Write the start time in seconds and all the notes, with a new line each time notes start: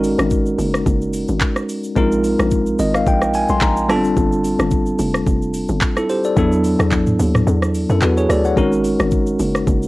Already playing: G#1 G#3 C#4 D#4 F#4 A#4
0.04 open hi-hat, shaker
0.19 G#1, cross-stick, shaker
0.30 kick, shaker
0.46 shaker
0.59 F#1, open hi-hat, shaker
0.74 cross-stick, shaker
0.86 F#1, kick, shaker
1.02 shaker
1.13 open hi-hat, shaker
1.28 G#1, shaker
1.41 kick, clap, shaker
1.56 cross-stick, shaker
1.69 open hi-hat, shaker
1.84 shaker
1.96 A#1 G#3 C4 D#4 F4 A#4, kick, shaker
2.12 shaker
2.24 open hi-hat, shaker
2.39 A#1, cross-stick, shaker
2.51 kick, shaker
2.66 shaker
2.79 G#1 D#5, open hi-hat, shaker
2.94 F5, cross-stick, shaker
3.06 A#1 G5, kick, shaker
3.21 cross-stick, shaker
3.34 G#5, open hi-hat, shaker
3.48 B1 C6, shaker
3.61 A#1 A#5, kick, clap, shaker
3.77 shaker
3.88 G1 G3 B3 D4 F4 A4 A5, cross-stick, open hi-hat, shaker
3.96 C4
4.04 shaker
4.17 G1, kick, shaker
4.32 shaker
4.44 open hi-hat, shaker
4.59 G1, cross-stick, shaker
4.71 kick, shaker
4.86 shaker
4.99 F1, open hi-hat, shaker
5.14 cross-stick, shaker
5.27 F1, kick, shaker
5.42 shaker
5.54 open hi-hat, shaker
5.68 G1, shaker
5.81 kick, clap, shaker
5.97 E4 A4, cross-stick, shaker
6.09 G4 C5, open hi-hat, shaker
6.24 A4 D5, shaker
6.36 E2 F#3 B3 D4 E4 A4, kick, shaker
6.52 shaker
6.64 open hi-hat, shaker
6.79 E2, cross-stick, shaker
6.91 kick, clap, shaker
7.07 mid tom, shaker
7.19 D#2, open hi-hat, shaker
7.34 cross-stick, mid tom, shaker
7.47 E2, shaker
7.62 cross-stick, shaker
7.74 open hi-hat, shaker
7.89 F#2 E4 A4, shaker
8.01 E2 F#4 B4, clap, shaker
8.17 G#4 C#5, shaker
8.29 D2 A4 D5, cross-stick, open hi-hat, shaker
8.44 C#5 F#5, shaker
8.56 G#1 G#3 C#4 D#4 F#4 A#4, kick, shaker
8.72 shaker
8.84 open hi-hat, shaker
8.99 G#1, cross-stick, shaker
9.11 kick, shaker
9.27 shaker
9.39 F#1, open hi-hat, shaker
9.55 cross-stick, shaker
9.67 F#1, kick, shaker
9.83 shaker